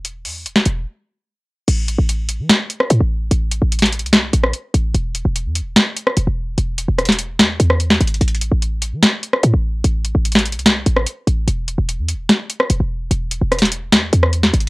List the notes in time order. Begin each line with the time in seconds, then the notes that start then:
Already playing: E1
0.05 closed hi-hat
0.25 E2, open hi-hat
0.46 E1, closed hi-hat
0.56 snare
0.65 E1, closed hi-hat
1.68 A1, closed hi-hat, crash
1.88 closed hi-hat
1.99 A1
2.09 closed hi-hat
2.29 closed hi-hat
2.39 E3
2.50 snare, closed hi-hat
2.70 closed hi-hat
2.80 cross-stick
2.90 A2, closed hi-hat
3.01 A1
3.31 A1, closed hi-hat
3.51 closed hi-hat
3.62 A1
3.72 closed hi-hat
3.79 snare, closed hi-hat
3.86 closed hi-hat
3.92 closed hi-hat
3.99 C2, closed hi-hat
4.06 closed hi-hat
4.13 snare, closed hi-hat
4.33 A1, closed hi-hat
4.43 cross-stick
4.53 closed hi-hat
4.74 A1, closed hi-hat
4.94 E1, closed hi-hat
5.15 closed hi-hat
5.25 E1
5.36 closed hi-hat
5.46 E2
5.55 closed hi-hat
5.61 E1
5.76 snare, closed hi-hat
5.97 closed hi-hat
6.07 cross-stick
6.17 E1, closed hi-hat
6.27 E1
6.58 E1, closed hi-hat
6.78 closed hi-hat
6.88 E1
6.99 cross-stick, closed hi-hat
7.05 snare, closed hi-hat
7.12 closed hi-hat
7.19 closed hi-hat
7.39 E2, snare, closed hi-hat
7.60 E2, closed hi-hat
7.70 cross-stick
7.80 closed hi-hat
7.90 snare
8.01 G#1, closed hi-hat
8.07 closed hi-hat
8.14 closed hi-hat
8.21 A1, closed hi-hat
8.28 closed hi-hat
8.35 closed hi-hat
8.41 closed hi-hat
8.52 A1
8.62 closed hi-hat
8.82 closed hi-hat
8.92 E3
9.03 snare, closed hi-hat
9.23 closed hi-hat
9.33 cross-stick
9.43 A2, closed hi-hat
9.54 A1
9.84 A1, closed hi-hat
10.05 closed hi-hat
10.15 A1
10.25 closed hi-hat
10.32 snare, closed hi-hat
10.39 closed hi-hat
10.46 closed hi-hat
10.52 C2, closed hi-hat
10.59 closed hi-hat
10.66 snare, closed hi-hat
10.86 A1, closed hi-hat
10.97 cross-stick
11.07 closed hi-hat
11.27 A1, closed hi-hat
11.48 E1, closed hi-hat
11.68 closed hi-hat
11.78 E1
11.89 closed hi-hat
11.99 E2
12.08 closed hi-hat
12.14 E1
12.29 snare, closed hi-hat
12.50 closed hi-hat
12.60 cross-stick
12.70 E1, closed hi-hat
12.80 E1
13.11 E1, closed hi-hat
13.31 closed hi-hat
13.41 E1
13.52 cross-stick, closed hi-hat
13.59 snare, closed hi-hat
13.65 closed hi-hat
13.72 closed hi-hat
13.92 E2, snare, closed hi-hat
14.13 E2, closed hi-hat
14.23 cross-stick
14.33 closed hi-hat
14.43 snare
14.54 G#1, closed hi-hat
14.61 closed hi-hat